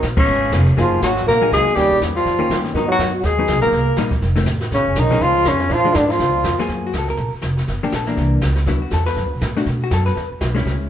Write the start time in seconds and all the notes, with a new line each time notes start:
0.02 A#1, kick, snare, hi-hat pedal
0.17 C#3 G#3 B3 C#4 F4, kick, crash
0.27 G#1, brush sweep
0.52 F1 G#3 B3 F4, kick, snare, hi-hat pedal
0.66 snare
0.77 F#1 F3 F#3 A#3 D#4 F4 G#4, brush sweep, kick, snare
1.02 G#1 F#3 F#4, kick, snare, hi-hat pedal
1.17 snare
1.27 A#1 A#3 A#4, brush sweep, kick, snare
1.42 F#3 A#3 D#4 G#4
1.51 C#2 G#3 G#4, kick, snare, hi-hat pedal
1.65 muted upright bass stroke, snare
1.75 D#2 D#3 G3 A#3 C#4 G4, brush sweep, kick, snare
1.84 C#2
1.91 A#1
2.01 E2, kick, snare, hi-hat pedal
2.16 F3 F4, snare
2.25 F2, brush sweep, kick, snare
2.39 D#3 A#3 C#4 G4, muted upright bass stroke
2.50 G2, kick, snare, hi-hat pedal
2.64 snare
2.73 G#2 D#3 F#3 B3 D#4, brush sweep, kick, snare
2.88 F#3 F#4
2.98 F#2, kick, snare, hi-hat pedal
3.19 F#3 F#4
3.23 D#2 G#3 G#4, brush sweep, kick, snare
3.39 F#3 B3 D#4
3.47 C#2, kick, snare, hi-hat pedal
3.55 B1
3.61 G#1 A#3 A#4, snare
3.72 C2, brush sweep, kick, snare
3.96 A#1 G3 A#3 D#4, kick, snare, hi-hat pedal
4.11 kick, snare
4.22 F1, brush sweep, kick, snare
4.36 D#3 A3 C4, snare
4.46 A1, kick, snare, hi-hat pedal
4.60 snare
4.71 A#1 C#3 C#4, brush sweep, kick, snare
4.80 G#1
4.87 F1
4.95 B1 D#3 D#4, kick, snare, hi-hat pedal
5.11 F3 G#3 C#4, snare
5.20 C#2 F3 F4, brush sweep, kick, snare
5.45 F2 C#3 C#4, kick, snare, hi-hat pedal
5.59 snare
5.70 A#2 F3 F4, brush sweep, kick, snare
5.85 F3 G#3 D4
5.94 G#2 D3 D4, kick, snare, hi-hat pedal
6.10 F3 F4, snare
6.19 C#2, brush sweep, kick, snare
6.44 F2, kick, snare, hi-hat pedal
6.59 F#3 A#3 F4 G#4, muted upright bass stroke, snare
6.68 F#2, brush sweep, kick, snare
6.87 F#4
6.93 C#2, kick, snare, hi-hat pedal
6.98 A4
7.07 A#4, snare
7.17 A#1, brush sweep, kick, snare
7.33 muted upright bass stroke
7.41 F1, kick, snare, hi-hat pedal
7.57 snare
7.68 G1, brush sweep, kick, snare
7.83 F3 A#3 D4 G4, muted upright bass stroke
7.92 A#1 A4, kick, snare, hi-hat pedal
8.07 E3 A#3 D4 A#4, snare
8.17 C2, brush sweep, kick, snare
8.41 C#2, kick, snare, hi-hat pedal
8.56 snare
8.66 D2 D3 F#3 B3 E4, brush sweep, kick, snare
8.82 F#4
8.91 E2 A4, kick, snare, hi-hat pedal
9.06 B4, snare
9.16 F#2, brush sweep, kick, snare
9.24 D2
9.34 B1
9.41 A2, kick, snare, hi-hat pedal
9.57 A3 D4 F#4, snare
9.66 B2, brush sweep, kick, snare
9.84 F#4
9.91 F#2 A4, kick, snare, hi-hat pedal
10.05 B4, snare
10.16 E2, brush sweep, kick, snare
10.30 muted upright bass stroke
10.41 B1, kick, snare, hi-hat pedal
10.55 G#3 C#4 E4, snare
10.66 C#2, brush sweep, kick, snare